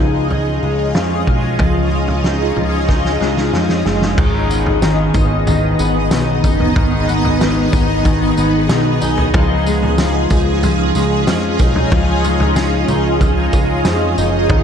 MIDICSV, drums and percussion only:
0, 0, Header, 1, 2, 480
1, 0, Start_track
1, 0, Tempo, 645161
1, 1188, Time_signature, 4, 2, 24, 8
1, 10888, End_track
2, 0, Start_track
2, 0, Title_t, "Drums"
2, 228, Note_on_c, 9, 43, 57
2, 302, Note_off_c, 9, 43, 0
2, 706, Note_on_c, 9, 38, 110
2, 781, Note_off_c, 9, 38, 0
2, 948, Note_on_c, 9, 36, 76
2, 1022, Note_off_c, 9, 36, 0
2, 1183, Note_on_c, 9, 43, 97
2, 1187, Note_on_c, 9, 36, 102
2, 1257, Note_off_c, 9, 43, 0
2, 1261, Note_off_c, 9, 36, 0
2, 1547, Note_on_c, 9, 43, 53
2, 1621, Note_off_c, 9, 43, 0
2, 1669, Note_on_c, 9, 38, 91
2, 1744, Note_off_c, 9, 38, 0
2, 1908, Note_on_c, 9, 43, 55
2, 1982, Note_off_c, 9, 43, 0
2, 2148, Note_on_c, 9, 36, 75
2, 2149, Note_on_c, 9, 38, 51
2, 2222, Note_off_c, 9, 36, 0
2, 2224, Note_off_c, 9, 38, 0
2, 2271, Note_on_c, 9, 38, 45
2, 2345, Note_off_c, 9, 38, 0
2, 2392, Note_on_c, 9, 38, 63
2, 2466, Note_off_c, 9, 38, 0
2, 2509, Note_on_c, 9, 38, 54
2, 2584, Note_off_c, 9, 38, 0
2, 2630, Note_on_c, 9, 38, 75
2, 2705, Note_off_c, 9, 38, 0
2, 2747, Note_on_c, 9, 38, 61
2, 2821, Note_off_c, 9, 38, 0
2, 2869, Note_on_c, 9, 38, 80
2, 2944, Note_off_c, 9, 38, 0
2, 2989, Note_on_c, 9, 38, 74
2, 3064, Note_off_c, 9, 38, 0
2, 3109, Note_on_c, 9, 36, 113
2, 3110, Note_on_c, 9, 43, 116
2, 3110, Note_on_c, 9, 49, 89
2, 3184, Note_off_c, 9, 36, 0
2, 3185, Note_off_c, 9, 43, 0
2, 3185, Note_off_c, 9, 49, 0
2, 3354, Note_on_c, 9, 54, 66
2, 3428, Note_off_c, 9, 54, 0
2, 3470, Note_on_c, 9, 43, 64
2, 3544, Note_off_c, 9, 43, 0
2, 3587, Note_on_c, 9, 54, 77
2, 3588, Note_on_c, 9, 38, 106
2, 3662, Note_off_c, 9, 54, 0
2, 3663, Note_off_c, 9, 38, 0
2, 3825, Note_on_c, 9, 43, 65
2, 3825, Note_on_c, 9, 54, 56
2, 3828, Note_on_c, 9, 36, 89
2, 3900, Note_off_c, 9, 43, 0
2, 3900, Note_off_c, 9, 54, 0
2, 3903, Note_off_c, 9, 36, 0
2, 4070, Note_on_c, 9, 43, 70
2, 4070, Note_on_c, 9, 54, 60
2, 4145, Note_off_c, 9, 43, 0
2, 4145, Note_off_c, 9, 54, 0
2, 4309, Note_on_c, 9, 54, 64
2, 4383, Note_off_c, 9, 54, 0
2, 4546, Note_on_c, 9, 38, 120
2, 4547, Note_on_c, 9, 54, 89
2, 4620, Note_off_c, 9, 38, 0
2, 4621, Note_off_c, 9, 54, 0
2, 4791, Note_on_c, 9, 36, 86
2, 4792, Note_on_c, 9, 54, 69
2, 4866, Note_off_c, 9, 36, 0
2, 4867, Note_off_c, 9, 54, 0
2, 4911, Note_on_c, 9, 43, 65
2, 4986, Note_off_c, 9, 43, 0
2, 5030, Note_on_c, 9, 43, 115
2, 5031, Note_on_c, 9, 36, 121
2, 5105, Note_off_c, 9, 36, 0
2, 5105, Note_off_c, 9, 43, 0
2, 5275, Note_on_c, 9, 54, 62
2, 5349, Note_off_c, 9, 54, 0
2, 5393, Note_on_c, 9, 43, 63
2, 5467, Note_off_c, 9, 43, 0
2, 5514, Note_on_c, 9, 38, 105
2, 5514, Note_on_c, 9, 54, 81
2, 5588, Note_off_c, 9, 54, 0
2, 5589, Note_off_c, 9, 38, 0
2, 5752, Note_on_c, 9, 36, 90
2, 5752, Note_on_c, 9, 43, 61
2, 5752, Note_on_c, 9, 54, 63
2, 5826, Note_off_c, 9, 43, 0
2, 5826, Note_off_c, 9, 54, 0
2, 5827, Note_off_c, 9, 36, 0
2, 5991, Note_on_c, 9, 36, 82
2, 5993, Note_on_c, 9, 43, 63
2, 5993, Note_on_c, 9, 54, 67
2, 6065, Note_off_c, 9, 36, 0
2, 6067, Note_off_c, 9, 43, 0
2, 6067, Note_off_c, 9, 54, 0
2, 6231, Note_on_c, 9, 54, 66
2, 6305, Note_off_c, 9, 54, 0
2, 6468, Note_on_c, 9, 38, 120
2, 6468, Note_on_c, 9, 54, 97
2, 6542, Note_off_c, 9, 38, 0
2, 6543, Note_off_c, 9, 54, 0
2, 6708, Note_on_c, 9, 54, 65
2, 6783, Note_off_c, 9, 54, 0
2, 6828, Note_on_c, 9, 43, 70
2, 6902, Note_off_c, 9, 43, 0
2, 6948, Note_on_c, 9, 43, 113
2, 6950, Note_on_c, 9, 36, 124
2, 7022, Note_off_c, 9, 43, 0
2, 7025, Note_off_c, 9, 36, 0
2, 7191, Note_on_c, 9, 54, 65
2, 7265, Note_off_c, 9, 54, 0
2, 7311, Note_on_c, 9, 43, 61
2, 7386, Note_off_c, 9, 43, 0
2, 7426, Note_on_c, 9, 54, 77
2, 7427, Note_on_c, 9, 38, 105
2, 7501, Note_off_c, 9, 54, 0
2, 7502, Note_off_c, 9, 38, 0
2, 7665, Note_on_c, 9, 43, 58
2, 7665, Note_on_c, 9, 54, 59
2, 7669, Note_on_c, 9, 36, 88
2, 7740, Note_off_c, 9, 43, 0
2, 7740, Note_off_c, 9, 54, 0
2, 7743, Note_off_c, 9, 36, 0
2, 7909, Note_on_c, 9, 43, 70
2, 7909, Note_on_c, 9, 54, 66
2, 7984, Note_off_c, 9, 43, 0
2, 7984, Note_off_c, 9, 54, 0
2, 8147, Note_on_c, 9, 54, 63
2, 8221, Note_off_c, 9, 54, 0
2, 8387, Note_on_c, 9, 38, 116
2, 8387, Note_on_c, 9, 54, 92
2, 8461, Note_off_c, 9, 38, 0
2, 8462, Note_off_c, 9, 54, 0
2, 8624, Note_on_c, 9, 54, 67
2, 8629, Note_on_c, 9, 36, 81
2, 8699, Note_off_c, 9, 54, 0
2, 8703, Note_off_c, 9, 36, 0
2, 8747, Note_on_c, 9, 43, 66
2, 8822, Note_off_c, 9, 43, 0
2, 8867, Note_on_c, 9, 43, 115
2, 8868, Note_on_c, 9, 36, 119
2, 8941, Note_off_c, 9, 43, 0
2, 8943, Note_off_c, 9, 36, 0
2, 9109, Note_on_c, 9, 54, 61
2, 9184, Note_off_c, 9, 54, 0
2, 9226, Note_on_c, 9, 43, 66
2, 9301, Note_off_c, 9, 43, 0
2, 9346, Note_on_c, 9, 54, 83
2, 9347, Note_on_c, 9, 38, 97
2, 9420, Note_off_c, 9, 54, 0
2, 9421, Note_off_c, 9, 38, 0
2, 9585, Note_on_c, 9, 43, 59
2, 9585, Note_on_c, 9, 54, 63
2, 9660, Note_off_c, 9, 43, 0
2, 9660, Note_off_c, 9, 54, 0
2, 9827, Note_on_c, 9, 36, 78
2, 9831, Note_on_c, 9, 43, 61
2, 9831, Note_on_c, 9, 54, 66
2, 9902, Note_off_c, 9, 36, 0
2, 9905, Note_off_c, 9, 43, 0
2, 9905, Note_off_c, 9, 54, 0
2, 10066, Note_on_c, 9, 54, 68
2, 10068, Note_on_c, 9, 36, 80
2, 10140, Note_off_c, 9, 54, 0
2, 10142, Note_off_c, 9, 36, 0
2, 10303, Note_on_c, 9, 38, 122
2, 10304, Note_on_c, 9, 54, 96
2, 10377, Note_off_c, 9, 38, 0
2, 10378, Note_off_c, 9, 54, 0
2, 10549, Note_on_c, 9, 54, 65
2, 10623, Note_off_c, 9, 54, 0
2, 10784, Note_on_c, 9, 43, 116
2, 10787, Note_on_c, 9, 36, 115
2, 10859, Note_off_c, 9, 43, 0
2, 10861, Note_off_c, 9, 36, 0
2, 10888, End_track
0, 0, End_of_file